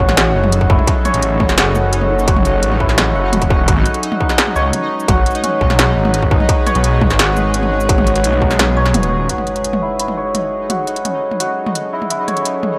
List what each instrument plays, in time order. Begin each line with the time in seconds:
Already playing: synth drone F#3 C#4 G#4 A4, santur C#4 E4 F#4 C#5, synth texture D#4 D#5
0.00 detuned saw bass A1
0.09 snare, mid tom
0.17 santur F#4, snare, closed hi-hat
0.35 detuned saw bass F#1
0.44 mid tom
0.52 closed hi-hat
0.61 kick
0.70 santur E4, kick
0.79 mid tom
0.87 kick, closed hi-hat
1.05 santur C#5, closed hi-hat, mid tom, shaker
1.14 detuned saw bass A1, closed hi-hat
1.23 closed hi-hat
1.40 detuned saw bass A1, kick, mid tom
1.49 detuned saw bass F#1, snare, shaker
1.57 santur F#4, snare, closed hi-hat
1.75 mid tom, shaker
1.93 santur C#4, closed hi-hat
2.01 mid tom
2.19 shaker
2.28 detuned saw bass F#1, santur F#4, kick, closed hi-hat
2.36 mid tom
2.45 closed hi-hat, shaker
2.63 detuned saw bass A1, closed hi-hat
2.71 mid tom
2.80 santur E4, kick
2.89 snare
2.98 snare, closed hi-hat, mid tom
3.15 detuned saw bass F#1, santur F#5
3.33 detuned saw bass E1, santur F#4, closed hi-hat, mid tom
3.42 kick, closed hi-hat
3.50 kick
3.68 detuned saw bass G#1, synth drone G#3 D#4 G#4 B4, santur F#4, kick, closed hi-hat
3.77 mid tom
3.86 closed hi-hat, shaker
3.94 closed hi-hat
4.03 closed hi-hat
4.12 mid tom
4.20 santur D#4, kick
4.29 snare, shaker
4.38 santur D#4, snare, closed hi-hat
4.47 mid tom
4.56 detuned saw bass C#2, santur C#5, shaker
4.73 closed hi-hat, mid tom
5.00 shaker
5.08 detuned saw bass G#1, santur F#4, kick, closed hi-hat, mid tom
5.26 closed hi-hat
5.31 shaker
5.35 closed hi-hat
5.44 santur C#4, closed hi-hat, mid tom
5.61 detuned saw bass B1, kick
5.70 snare, mid tom
5.79 santur F#4, snare, closed hi-hat
5.96 detuned saw bass G#1
6.05 mid tom
6.14 closed hi-hat
6.23 kick
6.31 santur D#4, kick
6.40 mid tom
6.49 santur D#4, kick, closed hi-hat
6.66 santur C#5, closed hi-hat, mid tom, shaker
6.75 detuned saw bass B1, closed hi-hat
6.84 closed hi-hat
7.01 detuned saw bass B1, kick, mid tom
7.10 detuned saw bass G#1, snare, shaker
7.19 santur F#4, snare, closed hi-hat
7.37 mid tom, shaker
7.54 santur C#4, closed hi-hat
7.63 mid tom
7.81 shaker
7.89 detuned saw bass G#1, santur F#4, kick, closed hi-hat
7.98 mid tom
8.07 closed hi-hat, shaker
8.16 closed hi-hat
8.24 detuned saw bass B1, closed hi-hat
8.33 mid tom
8.42 santur D#4, kick
8.51 snare, shaker
8.59 santur D#4, snare, closed hi-hat, mid tom
8.77 santur C#5
8.86 snare
8.94 detuned saw bass D#1, closed hi-hat, mid tom
9.03 closed hi-hat
9.29 synth drone F#3 C#4 G#4 A4, synth texture D#4 D#5, santur F#4, closed hi-hat, impact
9.38 mid tom
9.47 closed hi-hat
9.56 closed hi-hat
9.64 closed hi-hat
9.73 mid tom
9.82 santur E4
9.99 santur E4, closed hi-hat
10.08 mid tom
10.17 santur C#5
10.35 closed hi-hat, mid tom
10.70 santur F#4, closed hi-hat, mid tom
10.87 closed hi-hat
10.96 closed hi-hat
11.05 santur C#4, closed hi-hat, mid tom
11.31 mid tom
11.40 santur F#4, closed hi-hat
11.66 mid tom
11.75 closed hi-hat
11.93 santur E4
12.02 mid tom
12.10 santur E4, closed hi-hat
12.28 santur C#5, closed hi-hat, mid tom
12.37 closed hi-hat
12.45 closed hi-hat
12.63 mid tom